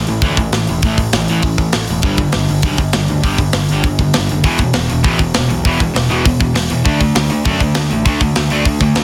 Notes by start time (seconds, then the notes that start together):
0.07 A1 A2 E3, open hi-hat
0.22 D2 A2 E3 A3, kick, open hi-hat
0.37 A1 A2 E3, kick, open hi-hat
0.53 A1 A2 E3, snare, open hi-hat
0.67 E1 A2 E3, open hi-hat
0.82 A1 A2 E3 A3, kick, open hi-hat
0.98 A2 E3, kick, open hi-hat
1.13 A1 A2 E3, snare, open hi-hat
1.28 A1 A2 E3 A3, open hi-hat
1.42 A1 A2 E3, kick, open hi-hat
1.58 A1 A2 E3, kick, open hi-hat
1.73 A1 A2 E3, snare, open hi-hat
1.88 E1 A2 E3, open hi-hat
2.02 G1 G2 D3 G3, kick, open hi-hat
2.17 G2 D3, kick, open hi-hat
2.32 G1 G2 D3, snare, open hi-hat
2.49 G1 G2 D3, open hi-hat
2.62 B1 G2 D3 G3, kick, open hi-hat
2.77 G1 G2 D3, kick, open hi-hat
2.93 G1 G2 D3, snare, open hi-hat
3.08 D2 G2 D3, open hi-hat
3.23 G1 G2 D3 G3, kick, open hi-hat
3.38 G2 D3, kick, open hi-hat
3.53 G1 G2 D3, snare, open hi-hat
3.69 G1 G2 D3 G3, open hi-hat
3.84 G1 G2 D3, kick, open hi-hat
3.99 G1 G2 D3, kick, open hi-hat
4.14 G1 G2 D3, snare, open hi-hat
4.29 F#1 G2 D3, open hi-hat
4.44 E1 E2 B2 E3, kick, open hi-hat
4.58 kick, open hi-hat
4.63 E2 B2
4.73 E1 E2 B2, snare, open hi-hat
4.90 E1 E2 B2, open hi-hat
5.04 A1 E2 B2 E3, kick, open hi-hat
5.19 E1 E2 B2, kick, open hi-hat
5.34 E1 E2 B2, snare, open hi-hat
5.50 B1 E2 B2, open hi-hat
5.65 E1 E2 B2 E3, kick, open hi-hat
5.80 E2 B2, kick, open hi-hat
5.95 E1 E2 B2, snare, open hi-hat
6.09 E1 E2 B2 E3, open hi-hat
6.25 E1 E2 B2, kick, open hi-hat
6.40 E1 E2 B2, kick, open hi-hat
6.55 E1 E2 B2, snare, open hi-hat
6.70 E2 B2, open hi-hat
6.84 D2 D3 A3 D4, kick, open hi-hat
7.00 D3 A3, kick, open hi-hat
7.15 D2 D3 A3, snare, open hi-hat
7.30 D2 D3 A3, open hi-hat
7.45 F#2 D3 A3 D4, kick, open hi-hat
7.60 D2 D3 A3, kick, open hi-hat
7.75 D2 D3 A3, snare, open hi-hat
7.91 A1 D3 A3, open hi-hat
8.06 D2 D3 A3 D4, kick, open hi-hat
8.21 D3 A3, kick, open hi-hat
8.36 D2 D3 A3, snare, open hi-hat
8.50 D2 D3 A3 D4, open hi-hat
8.65 D2 D3 A3, kick, open hi-hat
8.80 D2 D3 A3, kick, open hi-hat
8.95 D2 D3 A3, snare, open hi-hat